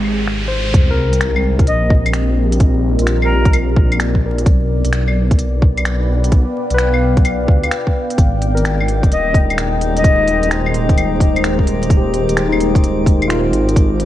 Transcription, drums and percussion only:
0.04 claves medium
0.28 finger snap medium
0.74 kick loud
0.74 closed hi-hat medium
1.13 closed hi-hat medium
1.21 finger snap loud
1.21 closed hi-hat medium
1.36 claves medium
1.59 kick loud
1.59 closed hi-hat soft
1.67 closed hi-hat medium
1.90 kick loud
2.06 closed hi-hat soft
2.06 claves medium
2.13 finger snap loud
2.13 closed hi-hat medium
2.52 closed hi-hat medium
2.60 kick loud
2.60 closed hi-hat medium
2.99 closed hi-hat medium
3.07 finger snap loud
3.07 closed hi-hat medium
3.22 claves medium
3.45 kick loud
3.45 closed hi-hat soft
3.53 closed hi-hat medium
3.53 claves medium
3.76 kick loud
3.92 closed hi-hat soft
3.92 claves medium
4.00 finger snap loud
4.00 closed hi-hat medium
4.15 kick medium
4.38 closed hi-hat medium
4.46 kick loud
4.46 closed hi-hat medium
4.85 closed hi-hat medium
4.93 finger snap loud
4.93 closed hi-hat medium
5.08 claves medium
5.31 kick loud
5.31 closed hi-hat soft
5.39 closed hi-hat medium
5.62 kick loud
5.78 closed hi-hat soft
5.78 claves medium
5.85 finger snap loud
5.85 closed hi-hat medium
6.24 closed hi-hat medium
6.32 kick loud
6.32 closed hi-hat medium
6.70 closed hi-hat medium
6.78 finger snap loud
6.78 closed hi-hat medium
6.94 claves medium
7.17 kick loud
7.17 closed hi-hat soft
7.25 closed hi-hat medium
7.25 claves medium
7.48 kick loud
7.63 closed hi-hat soft
7.63 claves medium
7.71 finger snap loud
7.71 closed hi-hat medium
7.87 kick medium
8.10 closed hi-hat medium
8.18 kick loud
8.18 closed hi-hat medium
8.42 open hi-hat medium
8.57 closed hi-hat medium
8.65 finger snap loud
8.65 closed hi-hat medium
8.80 claves medium
8.88 open hi-hat medium
9.03 kick loud
9.03 closed hi-hat soft
9.12 closed hi-hat medium
9.34 kick loud
9.34 open hi-hat medium
9.50 closed hi-hat soft
9.50 claves medium
9.58 finger snap loud
9.58 closed hi-hat medium
9.81 open hi-hat medium
9.97 closed hi-hat medium
10.04 kick loud
10.04 closed hi-hat medium
10.28 open hi-hat medium
10.43 closed hi-hat medium
10.51 finger snap loud
10.51 closed hi-hat medium
10.66 claves medium
10.74 open hi-hat medium
10.89 kick loud
10.89 closed hi-hat soft
10.98 closed hi-hat medium
10.98 claves medium
11.20 kick loud
11.20 open hi-hat medium
11.36 closed hi-hat soft
11.36 claves medium
11.44 finger snap loud
11.44 closed hi-hat medium
11.59 kick medium
11.67 open hi-hat medium
11.83 closed hi-hat medium
11.90 kick loud
11.90 closed hi-hat medium
12.14 open hi-hat medium
12.29 closed hi-hat medium
12.37 finger snap loud
12.37 closed hi-hat medium
12.52 claves medium
12.60 open hi-hat medium
12.75 kick loud
12.75 closed hi-hat soft
12.84 closed hi-hat medium
13.06 kick loud
13.06 open hi-hat medium
13.22 closed hi-hat soft
13.22 claves medium
13.30 finger snap loud
13.30 closed hi-hat medium
13.53 open hi-hat medium
13.69 closed hi-hat medium
13.76 kick loud
13.76 closed hi-hat medium
14.00 open hi-hat medium

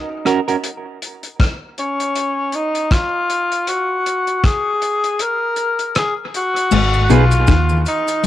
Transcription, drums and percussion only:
0.26 cross-stick medium
0.26 closed hi-hat medium
0.48 closed hi-hat soft
0.64 closed hi-hat medium
1.02 closed hi-hat medium
1.23 closed hi-hat soft
1.40 kick loud
1.40 cross-stick loud
1.40 closed hi-hat medium
1.78 closed hi-hat medium
2.00 closed hi-hat medium
2.16 closed hi-hat medium
2.52 closed hi-hat soft
2.75 closed hi-hat soft
2.91 kick medium
2.91 cross-stick loud
2.91 closed hi-hat medium
3.30 closed hi-hat medium
3.52 closed hi-hat soft
3.67 closed hi-hat medium
4.06 closed hi-hat medium
4.27 closed hi-hat soft
4.44 kick medium
4.44 cross-stick loud
4.44 closed hi-hat medium
4.82 closed hi-hat medium
5.04 closed hi-hat medium
5.19 closed hi-hat medium
5.56 closed hi-hat medium
5.79 closed hi-hat soft
5.95 cross-stick loud
5.95 closed hi-hat medium
6.34 closed hi-hat medium
6.56 closed hi-hat medium
6.71 crash loud
6.71 cabasa medium
6.93 cabasa soft
7.10 closed hi-hat medium
7.10 cabasa medium
7.31 closed hi-hat soft
7.31 cabasa medium
7.47 kick loud
7.47 cross-stick loud
7.47 closed hi-hat medium
7.47 cabasa medium
7.69 cabasa soft
7.86 closed hi-hat medium
7.86 cabasa soft
8.08 closed hi-hat medium
8.08 cabasa medium

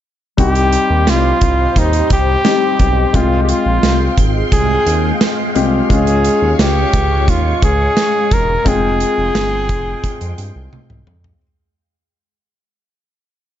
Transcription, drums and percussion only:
0.38 kick medium
0.38 closed hi-hat medium
0.55 closed hi-hat soft
0.73 closed hi-hat medium
1.07 snare medium
1.07 closed hi-hat medium
1.41 kick medium
1.41 closed hi-hat medium
1.76 kick medium
1.76 closed hi-hat medium
1.93 closed hi-hat soft
2.10 kick medium
2.10 closed hi-hat medium
2.45 snare loud
2.45 closed hi-hat medium
2.79 kick medium
2.79 closed hi-hat medium
3.14 kick medium
3.14 closed hi-hat medium
3.49 closed hi-hat medium
3.83 snare medium
3.83 closed hi-hat medium
4.17 kick medium
4.17 closed hi-hat medium
4.52 kick medium
4.52 closed hi-hat medium
4.87 closed hi-hat medium
5.21 snare medium
5.21 closed hi-hat medium
5.56 closed hi-hat medium
5.90 kick medium
5.90 closed hi-hat medium
6.07 closed hi-hat soft
6.25 closed hi-hat medium
6.59 snare loud
6.59 closed hi-hat medium
6.93 kick medium
6.93 closed hi-hat medium
7.28 kick medium
7.28 closed hi-hat medium
7.62 kick medium
7.62 closed hi-hat medium
7.97 snare medium
7.97 closed hi-hat medium
8.31 kick medium
8.31 closed hi-hat medium
8.66 kick medium
8.66 closed hi-hat medium
9.00 closed hi-hat medium
9.35 snare medium
9.35 closed hi-hat medium
9.69 kick medium
9.69 closed hi-hat medium
10.04 kick medium
10.04 closed hi-hat medium
10.21 closed hi-hat soft
10.38 closed hi-hat medium
10.73 high tom medium
10.90 mid tom medium
11.07 mid tom medium
11.24 floor tom medium

